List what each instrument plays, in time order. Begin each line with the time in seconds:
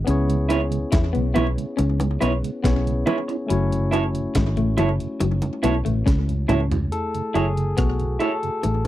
0.04 fingered electric bass C#2, tine electric piano B3 C#4 E4, clean electric guitar C#4, closed hi-hat
0.09 tine electric piano G#4 C#5
0.29 tonewheel organ C#3 G#3, closed hi-hat
0.49 tonewheel organ B3 C#4 E4, clean electric guitar E4 B4 C#5, closed hi-hat, high bongo
0.71 tonewheel organ C#3 G#3, closed hi-hat
0.92 fingered electric bass E2, clean electric guitar E4, kick, snare, closed hi-hat, high bongo
1.13 fingered electric bass B1, tonewheel organ C#3 G#3, clean electric guitar B3, closed hi-hat
1.34 fingered electric bass B1, clean electric guitar B3 E4 B4 C#5, tonewheel organ B3 C#4 E4, closed hi-hat, low bongo
1.57 tonewheel organ C#3 G#3, closed hi-hat
1.77 fingered electric bass C#2, clean electric guitar C#4, closed hi-hat, high bongo
2.00 tonewheel organ C#3 G#3, closed hi-hat, high bongo
2.21 fingered electric bass B1, clean electric guitar B3 E4 B4 C#5, tonewheel organ B3 C#4 E4, closed hi-hat, high bongo
2.43 tonewheel organ C#3 G#3, closed hi-hat
2.63 fingered electric bass B1, tine electric piano B3 C#4 E4 G#4 C#5, clean electric guitar B3, kick, snare, closed hi-hat
2.86 tonewheel organ C#3 G#3, closed hi-hat
3.06 tonewheel organ B3 C#4 E4, clean electric guitar E4 B4 C#5, closed hi-hat, high bongo, low bongo
3.28 tonewheel organ C#4 E4, muted clean electric guitar stroke, closed hi-hat
3.46 clean electric guitar F#3, tine electric piano A3 C#4 E4, closed hi-hat
3.51 fingered electric bass F#1, tine electric piano F#4 C#5
3.71 tonewheel organ F#2 C#3, closed hi-hat
3.91 tonewheel organ A3 E4 F#4, clean electric guitar E4 A4 C#5, closed hi-hat, high bongo
4.13 tonewheel organ F#2 C#3, closed hi-hat
4.35 fingered electric bass G#1, clean electric guitar G#3, kick, snare, closed hi-hat, high bongo
4.56 fingered electric bass A1, tonewheel organ F#2 C#3, clean electric guitar A3, closed hi-hat
4.77 fingered electric bass F#1, clean electric guitar F#3 E4 A4 C#5, tonewheel organ A3 E4 F#4, closed hi-hat, low bongo
5.00 tonewheel organ F#2 C#3, closed hi-hat
5.20 fingered electric bass F#1, clean electric guitar F#3, closed hi-hat, high bongo
5.42 tonewheel organ F#2 C#3, closed hi-hat, high bongo
5.63 fingered electric bass B1, tonewheel organ A3 E4 F#4, clean electric guitar B3 E4 A4 C#5, closed hi-hat, high bongo
5.85 fingered electric bass A1, tonewheel organ F#2 C#3, clean electric guitar A3, closed hi-hat
6.06 fingered electric bass C#2, clean electric guitar C#4, kick, snare, closed hi-hat
6.28 tonewheel organ F#2 C#3, closed hi-hat
6.48 fingered electric bass C#2, tonewheel organ A3 E4 F#4, clean electric guitar C#4 E4 A4 C#5, closed hi-hat, mid tom, high bongo, low bongo
6.71 tonewheel organ E4 F#4, closed hi-hat, floor tom
6.92 tine electric piano A3 E4 G#4 A4, closed hi-hat
7.15 tonewheel organ F#2 C#3, closed hi-hat
7.34 fingered electric bass F#1, clean electric guitar F#3 E4 A4 C#5, tonewheel organ A3 E4 F#4, tine electric piano G#4, closed hi-hat
7.57 tonewheel organ F#2 C#3, closed hi-hat
7.77 fingered electric bass B1, clean electric guitar B3, tine electric piano F#4, kick, cross-stick, closed hi-hat
8.00 tonewheel organ F#2 C#3, closed hi-hat
8.20 tonewheel organ A3 E4 F#4, clean electric guitar E4 A4 C#5, tine electric piano A4, closed hi-hat
8.43 tonewheel organ F#2 C#3, closed hi-hat
8.63 fingered electric bass A1, clean electric guitar A3, closed hi-hat, high bongo